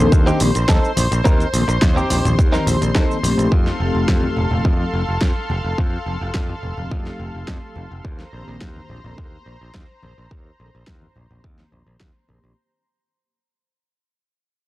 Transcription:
Already playing: analog synth pad C5 C6
0.00 analog polysynth D#3 A#3 C4 D4 A4
0.12 picked electric bass D#2, kick, closed hi-hat, shaker
0.26 analog polysynth D#3 A#3 C4 D4 G4, clean electric guitar C4 D#4 G4, closed hi-hat, shaker
0.40 picked electric bass A#1, analog polysynth D#3 A#3 C4 D4 G4, open hi-hat, shaker
0.55 picked electric bass A#1, muted clean electric guitar stroke, closed hi-hat, shaker
0.68 picked electric bass D#2, clean electric guitar C4 D#4 A4, kick, snare, closed hi-hat, shaker
0.84 shaker
0.97 picked electric bass A#1, open hi-hat, high conga, shaker
1.12 picked electric bass A#1, muted clean electric guitar stroke, closed hi-hat, shaker
1.24 picked electric bass D#2, clean electric guitar C4 D#4 A#4, kick, closed hi-hat, shaker
1.40 closed hi-hat, shaker
1.53 picked electric bass A#1, analog polysynth D#3 A#3 C4 D4 A4, open hi-hat, shaker
1.68 picked electric bass A#1, muted clean electric guitar stroke, closed hi-hat, shaker
1.81 picked electric bass D#2, muted clean electric guitar stroke, kick, snare, closed hi-hat, shaker
1.96 clean electric guitar C4 D#4 G4, high conga, shaker
2.10 picked electric bass A#1, open hi-hat, muted conga, low conga, shaker
2.24 picked electric bass A#1, analog polysynth D#3 A#3 C4 G4 D5, closed hi-hat, low conga, shaker
2.39 picked electric bass D#2, kick, closed hi-hat, shaker
2.52 clean electric guitar C4 D#4 A#4, snare, closed hi-hat, shaker
2.67 picked electric bass A#1, open hi-hat, low conga, shaker
2.81 picked electric bass A#1, muted clean electric guitar stroke, closed hi-hat, shaker
2.95 picked electric bass D#2, clean electric guitar C4 D#4 A4, kick, snare, closed hi-hat, muted conga, shaker
3.11 shaker
3.23 picked electric bass A#1, analog polysynth F3 A3 C4 D#4 G4, open hi-hat, high conga, shaker
3.38 picked electric bass A#1, muted clean electric guitar stroke, closed hi-hat, shaker
3.52 picked electric bass F2, analog synth pad A4 F5, kick
3.67 snare
3.80 picked electric bass F1, analog polysynth F3 A3 C4 D#4 G4
3.95 picked electric bass F1
4.08 picked electric bass F2, kick, snare
4.23 high conga
4.37 picked electric bass F1, low conga
4.51 picked electric bass F1, analog polysynth F3 A3 C4 D#4 A4, low conga
4.65 picked electric bass F2, kick
4.80 analog polysynth F3 A3 C4 D#4
4.93 picked electric bass F1, analog polysynth F3 A3 C4 D#4 G4
5.09 picked electric bass F1
5.21 picked electric bass F2, kick, snare
5.50 picked electric bass F1, high conga
5.64 picked electric bass F1
5.78 picked electric bass F2, kick
6.06 picked electric bass F1, analog polysynth F3 A3 C4 D#4 A4
6.21 picked electric bass F1
6.34 picked electric bass F2, kick, snare
6.49 high conga
6.63 picked electric bass F1, low conga
6.77 picked electric bass F1, analog polysynth F3 A3 C4 D#4 G4, low conga
6.91 picked electric bass F2, kick
7.06 snare
7.20 picked electric bass F1
7.35 picked electric bass F1
7.48 picked electric bass F2, kick, snare
7.76 picked electric bass F1, high conga
7.92 picked electric bass F1
8.04 picked electric bass D#2, analog synth pad C5 A#5, kick
8.19 snare
8.32 picked electric bass A#1, analog polysynth D#3 A#3 C4 D4 G4
8.48 picked electric bass A#1
8.61 picked electric bass D#2, kick, snare
8.76 high conga
8.89 picked electric bass A#1, low conga
9.04 picked electric bass A#1, analog polysynth D#3 A#3 C4 D4 A4, low conga
9.18 picked electric bass D#2, kick
9.32 analog polysynth D#3 A#3 C4 D4
9.45 picked electric bass A#1, analog polysynth D#3 A#3 C4 D4 G4
9.61 picked electric bass A#1
9.74 picked electric bass D#2, kick, snare
10.03 picked electric bass A#1, high conga
10.18 picked electric bass A#1
10.31 picked electric bass D#2, kick
10.59 picked electric bass A#1, analog polysynth D#3 A#3 C4 D4 A4
10.75 picked electric bass A#1
10.87 picked electric bass D#2, kick, snare
11.02 high conga
11.16 picked electric bass A#1, low conga
11.30 picked electric bass A#1, analog polysynth D#3 A#3 C4 D4 G4, low conga
11.44 picked electric bass D#2, kick
11.59 snare
11.72 picked electric bass A#1, low conga
11.87 picked electric bass A#1
12.00 picked electric bass D#2, kick, snare
12.28 picked electric bass A#1, analog polysynth D#3 A#3 C4 D4 G4, high conga
12.44 picked electric bass A#1

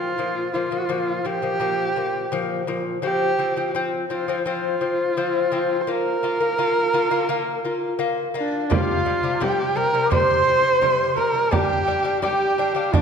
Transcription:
Already playing: lute A#2 F3, horsehead fiddle F4
0.18 lute A#2 F3
0.53 lute A#2 F3, horsehead fiddle F4
0.71 lute A#2 F3
0.89 lute A#2 F3
1.25 lute A#2 F3, horsehead fiddle G4
1.42 lute A#2 F3
1.60 lute A#2 F3
1.96 lute A#2 F3
2.32 lute A#2 F3
2.67 lute A#2 F3
3.02 lute F3 C4, horsehead fiddle G4
3.38 lute F3 C4
3.57 lute F3 C4
3.75 lute F3 C4
4.10 lute F3 C4, horsehead fiddle F4
4.28 lute F3 C4
4.46 lute F3 C4, horsehead fiddle F4
4.81 lute F3 C4
5.17 lute F3 C4
5.52 lute F3 C4
5.81 horsehead fiddle C5
5.87 lute A#3 F4, horsehead fiddle A#4
6.23 lute A#3 F4
6.40 lute A#3 F4
6.58 lute A#3 F4
6.93 lute A#3 F4
7.11 lute A#3 F4
7.29 lute A#3 F4
7.64 lute A#3 F4
7.99 lute A#3 F4
8.34 lute A#3 F4, horsehead fiddle D4, dizi D5
8.70 lute C3 G3, horsehead fiddle F4, dizi F5, frame drum
9.05 lute C3 G3, frame drum
9.23 lute C3 G3
9.35 dizi A#5
9.40 lute C3 G3, horsehead fiddle G4, dizi G5, frame drum
9.76 lute C3 G3, horsehead fiddle A#4
9.94 lute C3 G3
10.05 dizi D6
10.11 lute C3 G3, horsehead fiddle C5, dizi C6, frame drum
10.47 lute C3 G3, frame drum
10.81 lute C3 G3, dizi C6, frame drum
11.17 lute C3 G3, horsehead fiddle A#4, dizi A#5, frame drum
11.34 lute C3 G3
11.51 lute G3 D4, horsehead fiddle G4, dizi G5, frame drum
11.87 lute G3 D4, frame drum
12.04 lute G3 D4
12.22 lute G3 D4, horsehead fiddle G4, dizi G5, frame drum
12.58 lute G3 D4
12.75 lute G3 D4, dizi F5
12.93 lute G3 D4, horsehead fiddle D4, dizi D5, frame drum

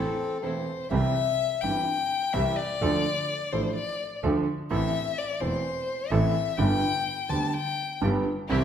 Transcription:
Already playing: double bass A1, grand piano A1 A2 E3 A3 C4 A4, string section C4 E4 A4, bandoneon C4, violin A4
0.42 grand piano E1 E2 E3 A3 C4 A4, string section C4 E4 A4, violin C5
0.91 double bass C2, grand piano C2 C3 E3 G3 C4 G4, violin E5
1.61 double bass G1, grand piano G1 G2 E3 G3 C4 G4, violin G5
2.33 grand piano C2 C3 E3 G3 C4 G4, double bass C2, violin E5
2.56 violin D5
2.81 double bass D2, grand piano D2 D3 F3 A3 D4 A4
3.52 grand piano A1 A2 F3 A3 D4 A4, double bass A1, violin C5
3.76 violin D5
4.23 grand piano D2 D3 F3 A3 D4 A4, double bass D2
4.71 grand piano A1 A2 E3 A3 C4 A4, double bass A1, violin E5
5.18 violin D5
5.40 double bass E1, grand piano E1 E2 E3 A3 C4 A4, violin C5
6.10 double bass A1, grand piano A1 A2 E3 A3 C4 A4, violin E5
6.57 double bass G1, grand piano G1 G2 D3 G3 B3 G4, violin G5
7.29 grand piano D2 D3 G3 B3 G4, double bass D2, violin A5
7.54 violin G5
8.01 double bass G1, grand piano G1 G2 D3 G3 B3 G4
8.49 double bass C2, grand piano C2 C3 E3 G3 C4 G4, string section C4 E4 G4, violin E5

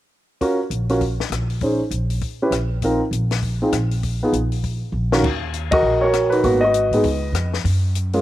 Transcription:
0.41 grand piano C#4 F4 F#4 A#4, kick, open hi-hat
0.70 upright bass A#1, closed hi-hat
0.89 grand piano C#4 F4 F#4 A#4, open hi-hat
1.01 kick, open hi-hat
1.20 snare
1.30 upright bass A#1, cross-stick, closed hi-hat
1.50 open hi-hat
1.61 grand piano C#4 D#4 G#4 C5, kick, open hi-hat
1.91 upright bass A#1, closed hi-hat
2.10 open hi-hat
2.21 kick, open hi-hat
2.42 grand piano C#4 E4 G4 B4
2.51 upright bass A#1, cross-stick, closed hi-hat
2.82 grand piano C4 D#4 F4 A#4, kick, open hi-hat
3.11 upright bass A#1, closed hi-hat
3.31 snare, open hi-hat
3.42 kick, open hi-hat
3.62 grand piano C4 D#4 F4 G#4
3.72 upright bass A#1, cross-stick, closed hi-hat
3.91 open hi-hat
4.03 kick, open hi-hat
4.23 grand piano B3 D#4 F4 G#4
4.32 upright bass A#1, closed hi-hat
4.52 open hi-hat
4.64 kick, open hi-hat
4.92 upright bass A#1
5.12 grand piano D#3 C#4 F4 F#4 A#4, snare
5.23 upright bass D#2, kick, crash
5.53 closed hi-hat
5.71 grand piano F#4 A#4 D#5, kick, ride
5.82 upright bass A#1
6.01 grand piano F#4 A#4 C#5
6.13 cross-stick, closed hi-hat
6.30 grand piano D#4 F#4 B4, open hi-hat
6.44 upright bass G#1, grand piano A#3 B3 D#4 F#4, kick, open hi-hat
6.61 grand piano F#4 B4 D#5
6.74 closed hi-hat
6.91 upright bass G#2, grand piano G#3 B3 D#4 G#4, open hi-hat
7.03 upright bass C#2, kick, open hi-hat
7.32 upright bass F2, cross-stick, closed hi-hat
7.54 snare
7.64 upright bass F#2, kick, open hi-hat
7.95 closed hi-hat
8.13 grand piano G#3 A#3 C#4 F4, open hi-hat

